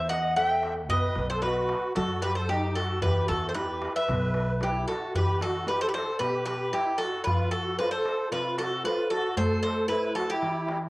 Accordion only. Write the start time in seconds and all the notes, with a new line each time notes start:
0.08 D#5
0.36 E5
0.90 B4
1.30 A4
1.44 F#4
1.96 F#4
2.23 G4
2.37 A4
2.50 D#4
2.77 F#4
3.03 G4
3.29 F#4
3.49 A4
3.55 G4
3.95 B4
4.61 E4
4.88 F#4
5.15 G4
5.43 F#4
5.69 G4
5.82 A4
5.88 G4
5.95 A4
6.21 G4
6.47 G4
6.72 E4
6.98 F#4
7.26 F4
7.52 F#4
7.78 F4
7.91 A4
8.31 F4
8.57 F#4
8.84 F4
9.11 F#4
9.37 A4
9.62 A4
9.88 E4
10.15 F#4
10.29 E4